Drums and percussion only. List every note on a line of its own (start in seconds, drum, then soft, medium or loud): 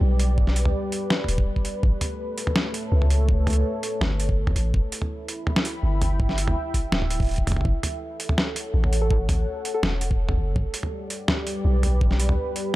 0.20 closed hi-hat medium
0.38 kick loud
0.47 snare soft
0.56 closed hi-hat medium
0.65 mid tom medium
0.92 closed hi-hat medium
1.10 snare loud
1.24 mid tom soft
1.28 closed hi-hat medium
1.38 kick loud
1.56 kick medium
1.65 closed hi-hat medium
1.83 kick loud
2.01 closed hi-hat medium
2.01 mid tom medium
2.38 closed hi-hat medium
2.47 mid tom medium
2.56 snare loud
2.74 closed hi-hat medium
3.02 mid tom soft
3.10 closed hi-hat medium
3.29 kick loud
3.47 closed hi-hat soft
3.47 mid tom medium
3.50 closed hi-hat soft
3.53 closed hi-hat medium
3.83 closed hi-hat medium
4.01 snare loud
4.01 mid tom medium
4.20 closed hi-hat medium
4.29 kick loud
4.47 kick medium
4.47 mid tom medium
4.56 closed hi-hat medium
4.74 kick loud
4.92 closed hi-hat medium
5.02 mid tom medium
5.28 closed hi-hat medium
5.47 mid tom medium
5.56 snare loud
5.65 closed hi-hat medium
6.02 closed hi-hat medium
6.02 mid tom medium
6.20 kick loud
6.29 snare soft
6.38 closed hi-hat medium
6.48 mid tom medium
6.74 kick medium
6.74 closed hi-hat medium
6.92 snare loud
7.02 mid tom medium
7.10 closed hi-hat medium
7.20 kick loud
7.20 closed hi-hat soft
7.22 closed hi-hat soft
7.25 closed hi-hat soft
7.27 closed hi-hat soft
7.29 closed hi-hat soft
7.31 closed hi-hat soft
7.34 closed hi-hat soft
7.36 kick medium
7.36 closed hi-hat soft
7.47 closed hi-hat medium
7.47 mid tom medium
7.52 mid tom medium
7.57 mid tom medium
7.61 mid tom soft
7.65 kick loud
7.83 closed hi-hat medium
7.83 mid tom medium
8.20 closed hi-hat medium
8.29 mid tom medium
8.38 snare loud
8.56 closed hi-hat medium
8.84 mid tom medium
8.93 closed hi-hat medium
9.11 kick loud
9.29 closed hi-hat medium
9.29 mid tom medium
9.65 closed hi-hat medium
9.83 snare loud
9.83 mid tom medium
10.01 closed hi-hat medium
10.11 kick loud
10.29 kick medium
10.29 mid tom medium
10.56 kick loud
10.74 closed hi-hat medium
10.83 mid tom medium
11.10 closed hi-hat medium
11.28 snare loud
11.28 mid tom medium
11.47 closed hi-hat medium
11.83 closed hi-hat medium
11.83 mid tom medium
12.01 kick loud
12.11 snare soft
12.20 closed hi-hat medium
12.29 mid tom medium
12.56 closed hi-hat medium